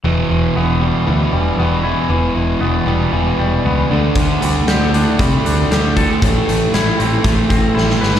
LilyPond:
<<
  \new Staff \with { instrumentName = "Clean electric guitar" } { \time 4/4 \key e \minor \tempo 4 = 117 e8 e8 b8 g8 e8 g8 b8 e'8 | e8 e8 b8 g8 e8 g8 b8 d8 | d8 g8 g'8 d'8 g8 d'8 g'8 a'8 | a,8 a8 e'8 c'8 a8 c'8 e'8 b'8 | }
  \new Staff \with { instrumentName = "Distorted electric guitar" } { \clef bass \time 4/4 \key e \minor <e, b, e>4 <e, b, e>8 <e, b, e>8 <e, b, e>4 <e, b, e>8 <e, b, e>8 | <e, b, e>4 <e, b, e>8 <e, b, e>8 <e, b, e>4 <e, b, e>8 <d a d'>8 | <d a d'>4 <d a d'>8 <d a d'>8 <d a d'>4 <d a d'>8 <d a d'>8 | <a, e a>4 <a, e a>8 <a, e a>8 <a, e a>4 <a, e a>8 <a, e a>8 | }
  \new Staff \with { instrumentName = "Picked electric bass" } { \clef bass \time 4/4 \key e \minor e,,8 e,,8 e,,4 d,8 e,,8 e,,4 | e,,8 e,,8 e,,8 e,,8 e,,8 e,,8 cis,8 d,8 | d,8 d,8 d,4 c8 d,8 d,4 | a,,8 a,,8 a,,8 a,,8 a,,8 a,,8 a,,8 g,,8 | }
  \new DrumStaff \with { instrumentName = "Drums" } \drummode { \time 4/4 r4 r4 r4 r4 | r4 r4 r4 r4 | <hh bd>8 hh8 <hh sn>8 hh8 <hh bd>8 hh8 <hh sn>8 <hh bd>8 | <hh bd>8 hh8 <hh sn>8 hh8 <hh bd>8 <hh bd>8 sn16 sn16 sn16 sn16 | }
>>